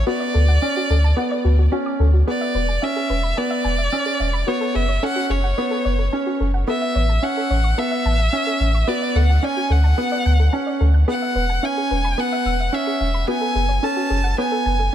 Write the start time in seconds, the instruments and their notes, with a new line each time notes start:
0.07 felt piano B3, synth arpeggio sound F#4, violin D5
0.20 synth arpeggio sound D5
0.34 sub bass D2, synth arpeggio sound A4
0.48 synth arpeggio sound F#5
0.62 felt piano C#4, synth arpeggio sound D5
0.77 synth arpeggio sound F#4
0.90 sub bass D2, synth arpeggio sound A4
1.04 synth arpeggio sound A5
1.17 felt piano B3, synth arpeggio sound F#5
1.31 synth arpeggio sound D5
1.45 sub bass D2, synth arpeggio sound F#4
1.59 synth arpeggio sound F#4
1.72 felt piano C#4, synth arpeggio sound F#4
1.86 synth arpeggio sound D6
2.00 sub bass D2, synth arpeggio sound A4
2.14 synth arpeggio sound F#4
2.27 felt piano B3, synth arpeggio sound G#4, violin D5
2.41 synth arpeggio sound E5
2.55 sub bass E1, synth arpeggio sound B4
2.69 synth arpeggio sound G#5
2.82 felt piano C#4, synth arpeggio sound E5, violin E5
2.96 synth arpeggio sound G#4
3.10 sub bass E1, synth arpeggio sound B4
3.23 synth arpeggio sound B5
3.37 felt piano B3, violin D5, synth arpeggio sound G#5
3.51 synth arpeggio sound E5
3.64 sub bass E1, synth arpeggio sound G#5
3.78 synth arpeggio sound E5
3.92 felt piano C#4, synth arpeggio sound E6
4.06 synth arpeggio sound G#4
4.20 sub bass E1, synth arpeggio sound E5
4.33 synth arpeggio sound B5
4.47 felt piano B3, synth arpeggio sound F#4, violin C#5
4.61 synth arpeggio sound A4
4.74 sub bass F#1, synth arpeggio sound G#4, violin E5
4.89 synth arpeggio sound C#5
5.03 felt piano C#4, synth arpeggio sound A4, violin F#5
5.16 synth arpeggio sound F#4
5.30 sub bass F#1, synth arpeggio sound G#4, violin C#5
5.44 synth arpeggio sound F#5
5.58 felt piano B3, synth arpeggio sound C#5
5.71 synth arpeggio sound A4
5.85 sub bass F#1, synth arpeggio sound C#5
5.99 synth arpeggio sound A4
6.13 felt piano C#4, synth arpeggio sound G#5
6.27 synth arpeggio sound F#4
6.40 sub bass F#1, synth arpeggio sound A4
6.54 synth arpeggio sound F#5
6.67 felt piano B3, synth arpeggio sound A4, violin E5
6.82 synth arpeggio sound E5
6.95 sub bass A1, synth arpeggio sound C#5
7.09 synth arpeggio sound A5
7.23 felt piano C#4, synth arpeggio sound E5, violin F#5
7.37 synth arpeggio sound A4
7.50 sub bass A1, synth arpeggio sound C#5
7.64 synth arpeggio sound C#6
7.78 felt piano B3, violin E5, synth arpeggio sound A5
7.91 synth arpeggio sound E5
8.05 sub bass A1, synth arpeggio sound A5
8.20 synth arpeggio sound E5
8.33 felt piano C#4, synth arpeggio sound E6
8.47 synth arpeggio sound A4
8.60 sub bass A1, synth arpeggio sound E5
8.75 synth arpeggio sound C#6
8.88 felt piano B3, synth arpeggio sound F#4, violin D5
9.02 synth arpeggio sound D5
9.15 sub bass D2, synth arpeggio sound A4, violin F#5
9.30 synth arpeggio sound F#5
9.43 felt piano C#4, synth arpeggio sound D5, violin G#5
9.57 synth arpeggio sound F#4
9.70 sub bass D2, synth arpeggio sound A4, violin F#5
9.84 synth arpeggio sound A5
9.98 felt piano B3, synth arpeggio sound F#5
10.12 synth arpeggio sound D5
10.26 sub bass D2, synth arpeggio sound F#6
10.40 synth arpeggio sound A4
10.53 felt piano C#4, synth arpeggio sound A5
10.67 synth arpeggio sound D5
10.81 sub bass D2, synth arpeggio sound A4
10.94 synth arpeggio sound F#6
11.08 felt piano B3, synth arpeggio sound G#4, violin F#5
11.22 synth arpeggio sound E5
11.35 sub bass E1, synth arpeggio sound B4
11.50 synth arpeggio sound G#5
11.63 felt piano C#4, synth arpeggio sound E5, violin G#5
11.78 synth arpeggio sound G#4
11.91 sub bass E1, synth arpeggio sound B4
12.04 synth arpeggio sound B5
12.18 felt piano B3, violin F#5, synth arpeggio sound G#5
12.33 synth arpeggio sound E5
12.46 sub bass E1, synth arpeggio sound E6
12.60 synth arpeggio sound E5
12.73 felt piano C#4, violin E5, synth arpeggio sound E6
12.87 synth arpeggio sound G#4
13.01 sub bass E1, synth arpeggio sound E5
13.14 synth arpeggio sound B5
13.28 felt piano B3, synth arpeggio sound F#4, violin G#5
13.41 synth arpeggio sound A4
13.55 sub bass F#1, synth arpeggio sound G#4
13.69 synth arpeggio sound C#5
13.83 felt piano C#4, synth arpeggio sound A4, violin A5
13.97 synth arpeggio sound F#4
14.10 sub bass F#1, synth arpeggio sound G#4
14.24 synth arpeggio sound F#5
14.38 felt piano B3, synth arpeggio sound C#5, violin G#5
14.52 synth arpeggio sound A4
14.66 sub bass F#1, synth arpeggio sound G#5
14.79 synth arpeggio sound A4